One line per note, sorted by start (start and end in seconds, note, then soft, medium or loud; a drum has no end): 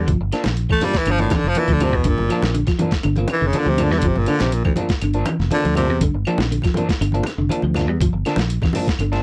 0.00 0.10 D3 medium
0.08 0.18 G1 loud
0.08 0.20 F3 medium
0.08 kick medium
0.08 closed hi-hat medium
0.21 0.31 G1 medium
0.21 muted clean electric guitar stroke soft
0.32 0.45 F3 medium
0.32 0.44 A#3 medium
0.32 0.43 D4 loud
0.32 muted clean electric guitar stroke medium
0.32 snare soft
0.32 closed hi-hat soft
0.32 claves medium
0.44 0.66 A#1 medium
0.44 snare medium
0.44 closed hi-hat soft
0.44 high conga medium
0.57 closed hi-hat medium
0.69 0.83 E3 medium
0.69 0.85 A3 medium
0.69 muted clean electric guitar stroke soft
0.69 kick medium
0.69 claves medium
0.81 0.94 F3 medium
0.81 0.99 G3 medium
0.81 0.94 A#3 medium
0.81 0.93 D4 medium
0.81 open hi-hat medium
0.81 high conga medium
0.81 low conga medium
0.94 muted clean electric guitar stroke soft
0.94 kick medium
0.94 snare medium
0.94 closed hi-hat soft
0.98 1.13 E3 medium
1.06 1.27 G1 medium
1.06 1.20 D3 medium
1.06 muted clean electric guitar stroke soft
1.06 closed hi-hat medium
1.06 claves medium
1.11 1.22 F3 medium
1.18 1.37 A2 medium
1.18 1.31 F3 medium
1.18 1.31 A#3 medium
1.18 1.32 D4 medium
1.18 closed hi-hat soft
1.18 high conga medium
1.30 1.44 E3 medium
1.30 muted clean electric guitar stroke soft
1.30 kick medium
1.30 snare soft
1.30 closed hi-hat medium
1.30 high conga medium
1.30 claves medium
1.35 1.50 D3 medium
1.44 1.54 F1 medium
1.48 1.60 F3 medium
1.55 1.75 E3 medium
1.55 1.69 F3 medium
1.55 1.69 A#3 medium
1.55 1.68 D4 medium
1.55 closed hi-hat medium
1.55 high conga medium
1.68 1.93 D2 medium
1.68 1.82 F3 medium
1.68 muted clean electric guitar stroke soft
1.68 kick medium
1.68 closed hi-hat soft
1.73 1.85 D3 medium
1.80 1.97 C3 medium
1.80 1.94 F3 medium
1.80 1.94 A#3 medium
1.80 1.93 D4 medium
1.80 closed hi-hat medium
1.80 high conga medium
1.80 low conga medium
1.80 claves medium
1.93 2.03 E2 medium
1.93 2.10 B2 medium
1.93 muted clean electric guitar stroke soft
1.93 kick medium
2.04 2.16 G1 loud
2.04 2.18 D3 medium
2.04 kick medium
2.04 closed hi-hat medium
2.08 2.56 A#2 medium
2.18 2.29 G1 medium
2.18 muted clean electric guitar stroke soft
2.18 low conga medium
2.29 2.42 F3 medium
2.29 2.43 F3 medium
2.29 2.43 A#3 medium
2.29 2.42 D4 medium
2.29 closed hi-hat medium
2.29 claves medium
2.42 2.63 A#1 medium
2.42 muted clean electric guitar stroke soft
2.42 snare medium
2.42 high conga medium
2.54 2.61 D3 medium
2.54 closed hi-hat medium
2.67 2.74 F3 medium
2.67 muted clean electric guitar stroke soft
2.67 kick medium
2.67 snare soft
2.67 closed hi-hat soft
2.67 claves medium
2.79 2.92 E3 medium
2.79 2.93 F3 medium
2.79 2.92 A#3 medium
2.79 2.92 D4 medium
2.79 closed hi-hat soft
2.79 high conga medium
2.79 low conga medium
2.91 muted clean electric guitar stroke soft
2.91 kick medium
2.91 snare medium
2.91 closed hi-hat soft
3.03 3.25 G1 medium
3.03 3.16 D3 medium
3.03 muted clean electric guitar stroke soft
3.03 closed hi-hat medium
3.03 claves medium
3.16 3.28 F3 medium
3.16 3.28 A#3 medium
3.16 closed hi-hat soft
3.16 high conga medium
3.28 muted clean electric guitar stroke soft
3.28 closed hi-hat soft
3.28 high conga medium
3.28 claves medium
3.32 3.49 E3 medium
3.41 3.52 F1 medium
3.41 3.54 D3 medium
3.47 3.60 C#3 medium
3.53 3.67 F3 medium
3.53 3.66 A#3 medium
3.53 3.66 D4 medium
3.53 closed hi-hat medium
3.53 high conga medium
3.58 3.70 D3 medium
3.66 3.91 D2 medium
3.66 3.85 C3 medium
3.66 3.79 F3 medium
3.66 muted clean electric guitar stroke soft
3.66 high conga medium
3.78 3.91 F3 medium
3.78 3.90 A#3 medium
3.78 3.90 D4 medium
3.78 closed hi-hat soft
3.78 low conga medium
3.78 claves medium
3.83 3.93 D3 medium
3.91 4.01 E2 medium
3.91 4.00 E3 medium
3.91 3.98 G3 medium
3.91 muted clean electric guitar stroke soft
3.91 snare soft
3.98 4.09 D3 medium
3.98 closed hi-hat medium
4.03 4.13 G1 loud
4.03 4.17 F3 medium
4.03 kick medium
4.07 4.20 C3 medium
4.16 4.26 G1 medium
4.16 4.30 A#2 medium
4.16 muted clean electric guitar stroke soft
4.16 low conga medium
4.26 4.42 D3 loud
4.26 4.42 D3 medium
4.26 4.40 F3 medium
4.26 4.40 A#3 medium
4.26 4.40 D4 medium
4.26 closed hi-hat medium
4.26 claves medium
4.39 4.61 A#1 medium
4.39 4.55 C3 medium
4.39 muted clean electric guitar stroke soft
4.39 snare medium
4.39 closed hi-hat soft
4.39 high conga medium
4.52 4.64 A#2 medium
4.52 closed hi-hat medium
4.65 4.72 D2 medium
4.65 4.79 E3 medium
4.65 muted clean electric guitar stroke soft
4.65 kick medium
4.65 high conga medium
4.65 claves medium
4.76 4.90 F3 medium
4.76 4.89 A#3 medium
4.76 4.89 D4 medium
4.76 closed hi-hat medium
4.76 high conga medium
4.76 low conga medium
4.89 muted clean electric guitar stroke soft
4.89 kick medium
4.89 snare medium
4.89 closed hi-hat soft
5.01 5.23 G1 medium
5.01 5.16 D3 medium
5.01 muted clean electric guitar stroke soft
5.01 closed hi-hat medium
5.01 claves medium
5.14 5.25 F3 medium
5.14 5.25 A#3 medium
5.14 5.26 D4 medium
5.14 closed hi-hat soft
5.26 5.41 E3 medium
5.26 muted clean electric guitar stroke soft
5.26 closed hi-hat medium
5.26 high conga medium
5.26 claves medium
5.39 5.50 F1 medium
5.39 snare soft
5.51 5.76 D3 medium
5.51 5.64 F3 medium
5.51 5.64 A#3 medium
5.51 5.63 D4 medium
5.51 closed hi-hat medium
5.51 high conga medium
5.64 5.90 D2 medium
5.64 5.78 F3 medium
5.64 closed hi-hat soft
5.64 high conga medium
5.75 6.00 C3 medium
5.75 5.89 F3 medium
5.75 5.89 A#3 medium
5.75 5.88 D4 medium
5.75 closed hi-hat medium
5.75 low conga medium
5.75 claves medium
5.89 6.00 E2 medium
5.89 muted clean electric guitar stroke soft
6.01 6.12 G1 loud
6.01 6.15 D3 medium
6.01 kick medium
6.01 closed hi-hat medium
6.14 6.24 G1 medium
6.14 muted clean electric guitar stroke soft
6.25 6.39 F3 medium
6.25 6.40 F3 medium
6.25 6.38 A#3 loud
6.25 6.38 D4 loud
6.25 closed hi-hat medium
6.25 claves medium
6.38 6.59 A#1 medium
6.38 muted clean electric guitar stroke soft
6.38 snare medium
6.38 high conga medium
6.51 6.58 D3 medium
6.51 closed hi-hat medium
6.62 6.71 F3 medium
6.62 muted clean electric guitar stroke soft
6.62 kick medium
6.62 snare soft
6.62 closed hi-hat soft
6.62 high conga medium
6.62 claves medium
6.74 6.89 E3 medium
6.74 6.89 F3 medium
6.74 6.89 A#3 medium
6.74 6.88 D4 medium
6.74 closed hi-hat medium
6.74 high conga medium
6.74 low conga medium
6.89 muted clean electric guitar stroke soft
6.89 kick medium
6.89 snare medium
6.89 closed hi-hat soft
7.01 7.21 G1 medium
7.01 7.14 D3 medium
7.01 muted clean electric guitar stroke soft
7.01 closed hi-hat medium
7.01 claves medium
7.12 7.25 F3 medium
7.12 7.25 A#3 medium
7.12 7.26 D4 medium
7.12 closed hi-hat soft
7.12 high conga medium
7.23 muted clean electric guitar stroke soft
7.23 closed hi-hat soft
7.23 high conga medium
7.23 claves medium
7.28 snare soft
7.38 7.48 F1 medium
7.38 7.51 D3 medium
7.49 7.63 F3 medium
7.49 7.62 A#3 medium
7.49 7.62 D4 medium
7.49 closed hi-hat medium
7.49 high conga medium
7.62 7.88 D2 medium
7.62 7.76 F3 medium
7.62 muted clean electric guitar stroke soft
7.62 high conga medium
7.74 7.88 F3 medium
7.74 7.87 A#3 medium
7.74 7.86 D4 medium
7.74 snare soft
7.74 closed hi-hat soft
7.74 high conga medium
7.74 low conga medium
7.74 claves medium
7.88 7.98 E2 medium
7.88 7.95 G3 medium
7.88 muted clean electric guitar stroke soft
8.00 8.11 G1 loud
8.00 8.14 F3 medium
8.00 kick medium
8.00 closed hi-hat medium
8.13 8.23 G1 medium
8.13 muted clean electric guitar stroke soft
8.25 8.39 D3 medium
8.25 8.38 F3 medium
8.25 8.38 A#3 medium
8.25 8.37 D4 loud
8.25 snare soft
8.25 closed hi-hat soft
8.25 claves medium
8.36 8.57 A#1 medium
8.36 muted clean electric guitar stroke soft
8.36 snare medium
8.36 closed hi-hat soft
8.36 high conga medium
8.50 closed hi-hat medium
8.62 8.77 E3 medium
8.62 muted clean electric guitar stroke soft
8.62 kick medium
8.62 snare soft
8.62 high conga medium
8.62 claves medium
8.73 8.87 F3 medium
8.73 8.88 A#3 medium
8.73 8.87 D4 medium
8.73 open hi-hat medium
8.73 high conga medium
8.73 low conga medium
8.87 muted clean electric guitar stroke soft
8.87 kick medium
8.87 snare medium
8.87 closed hi-hat soft
8.99 9.19 G1 medium
8.99 9.13 D3 medium
8.99 muted clean electric guitar stroke soft
8.99 closed hi-hat medium
8.99 claves medium
9.12 9.23 F3 medium
9.12 9.23 A#3 medium
9.12 9.23 D4 medium
9.12 snare soft
9.12 closed hi-hat soft